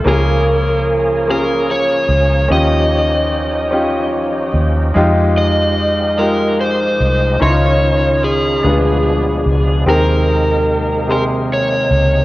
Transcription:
<<
  \new Staff \with { instrumentName = "Electric slide guitar" } { \time 6/8 \key aes \major \tempo 4. = 49 bes'4. bes'8 des''4 | ees''2 r4 | r8 ees''4 bes'8 c''4 | des''4 aes'2 |
bes'4. bes'8 des''4 | }
  \new Staff \with { instrumentName = "Grand piano" } { \time 6/8 \key aes \major <bes des' f' aes'>4 r8 <bes des' f' aes'>4 r8 | <des' ees' f' g'>4 r8 <des' ees' f' g'>4 r8 | <aes ees' f' g'>4 r8 <aes ees' f' g'>4 r8 | <des' ees' fes' f' c'''>4 r8 <d' f' aes' b'>4 r8 |
<c' g' aes' bes'>4 r8 <c g' aes' c'''>4 r8 | }
  \new Staff \with { instrumentName = "Grand piano" } { \clef bass \time 6/8 \key aes \major des4. r4. | ees4. r4. | r2. | des4. b,4. |
ees4. r4. | }
  \new Staff \with { instrumentName = "Tonewheel organ" } { \time 6/8 \key aes \major << { aes'2. | g'2.~ | g'2. | f'4. aes4.~ |
aes2. | } \\ { des'2. | ees'2.~ | ees'2. | des'4. d'4. |
c2. | } >> }
  \new Staff \with { instrumentName = "Tonewheel organ" } { \clef bass \time 6/8 \key aes \major << { bes2. | r2. | aes2. | ees'4. b4. |
bes2. | } \\ { f2.~ | f2.~ | f2. | ees4. f4. |
ees2. | } >> }
  \new Staff \with { instrumentName = "Fingered electric bass" } { \clef bass \time 6/8 \key aes \major des,2~ des,8 des,8 | ees,2~ ees,8 ees,8 | f,2~ f,8 c,8 | des,4. d,4 des,8 |
ees,2~ ees,8 des,8 | }
>>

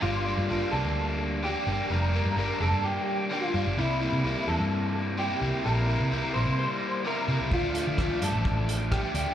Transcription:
<<
  \new Staff \with { instrumentName = "Clean electric guitar" } { \time 4/4 \key g \dorian \tempo 4 = 128 f'4. a'4 r8 g'4 | bes'4. a'8 g'4 f'8. r16 | e'4. a'4 r8 g'4 | bes'4. c''8 c''4 bes'8. r16 |
f'4. a'4 r8 g'4 | }
  \new Staff \with { instrumentName = "Overdriven electric guitar" } { \time 4/4 \key g \dorian <g, d g bes d'>8 <g bes d'>8 <g, d g bes d'>8 <g bes d'>4. <d g bes d'>8 <g bes d'>8 | <g, d g bes d'>8 <g bes d'>8 <g, d g bes d'>8 <g bes d'>4. <d g bes d'>8 <g bes d'>8 | <c g bes e'>8 <g bes e'>8 <c g bes e'>8 <g bes e'>4. <c g bes e'>8 <g bes e'>8 | <c g bes e'>8 <g bes e'>8 <c g bes e'>8 <g bes e'>4. <c g bes e'>8 <g bes e'>8 |
<d f a d'>8 <f a d'>8 <d f a d'>8 <f a d'>4. <d f a d'>8 <f a d'>8 | }
  \new Staff \with { instrumentName = "Picked electric bass" } { \clef bass \time 4/4 \key g \dorian g,,8. g,16 g,,16 r16 c,16 d,4.~ d,16 g,,16 r16 | f,,8. g,16 g,,16 r16 f,,16 g,8 r4 r16 g,16 g,,16 | c,8. c16 c,16 r16 e,16 g,4.~ g,16 c,16 r16 | bes,,8. c16 c,16 r16 bes,,16 c8 r4 r16 c16 c,16 |
d,8. d16 d,16 r16 g,16 a,,4.~ a,,16 d,16 r16 | }
  \new DrumStaff \with { instrumentName = "Drums" } \drummode { \time 4/4 r4 r4 r4 r4 | r4 r4 r4 r4 | r4 r4 r4 r4 | r4 r4 r4 r4 |
bd8 hh8 <bd ss>8 hh8 bd8 hh8 <bd ss>8 hh8 | }
>>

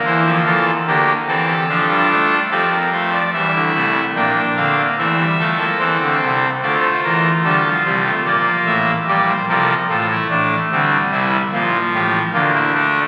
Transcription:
<<
  \new Staff \with { instrumentName = "Pipe organ" } { \time 4/4 \key g \minor \tempo 4 = 73 << { c''8 a'8 bes'8 a'16 g'16 f'4 a'16 bes'16 c''16 d''16 | e''4 g''8 f''8 e''4 c''4 | d''16 c''16 bes'8 a'8 c''8 d''8 e''8 d''16 c''16 bes'8 | r1 | } \\ { e'8 f'8 g'8 r4. g'8 f'8 | e'4 d'4 c'8 a'4. | f'2. g'8 a'8 | f'16 e'16 d'8 c'8 e'8 f'8 g'8 f'16 e'16 d'8 | } >> }
  \new Staff \with { instrumentName = "Pipe organ" } { \clef bass \time 4/4 \key g \minor << { bes4 bes8 c'8 d'4 c'8 a8 | g8 a8 bes8 c'16 bes16 a16 g16 a16 bes16 c'4 | a4 g16 f16 g16 a16 bes4 g8 f8 | a4 g4 f4 bes8 a8 | } \\ { <e, e>16 <f, f>16 <e, e>8 <d, d>8 <e, e>8 <f, f>16 <g, g>16 a8 <f, f>4 | <e, e>16 <d, d>16 <c, c>8 <bes,, bes,>8 <d, d>8 <e, e>8 <f, f>8 <e, e>16 <d, d>16 <c, c>8 | <d, d>8 <e, e>8 <d, d>8 <c, c>8 <bes,, bes,>8 <a,, a,>8 <bes,, bes,>8 <c, c>8 | <a,, a,>8 <a,, a,>8 <d, d>8 <c, c>8 <bes,, bes,>8 <a,, a,>8 <d, d>4 | } >> }
>>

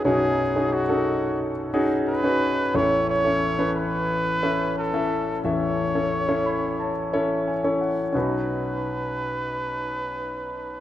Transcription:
<<
  \new Staff \with { instrumentName = "Trumpet" } { \time 4/4 \key b \mixolydian \tempo 4 = 89 gis'4 fis'4 r4 b'4 | cis''8 cis''4 b'4. a'4 | cis''2. r4 | b'1 | }
  \new Staff \with { instrumentName = "Grand piano" } { \time 4/4 \key b \mixolydian << { r1 | r1 | r4. b''8 a''8 a''8 gis''8 fis''8 | r1 | } \\ { <cis' dis' fis' cis''>8 r16 <cis' dis' fis' gis'>16 r16 <cis' dis' fis' a'>4 r16 <cis' dis' fis' gis'>8 r16 <cis' dis' fis' b'>8 r16 | <cis' e' a' cis''>8 r16 <cis' e' a' cis''>16 r16 <cis' e' a' b'>4 r16 <cis' e' a' e''>8 r16 <cis' e' a' e''>8 r16 | <cis' e' a' e''>8 r16 <cis' e' a' cis''>16 r16 <cis' e' a' cis''>4 r16 <cis' e' a' cis''>8 r16 <cis' e' a' cis''>8 r16 | <cis' dis' fis' b'>1 | } >> }
  \new Staff \with { instrumentName = "Grand piano" } { \clef bass \time 4/4 \key b \mixolydian <b,, fis,>1 | <a,, e,>1 | <a,, e,>1 | b,,1 | }
>>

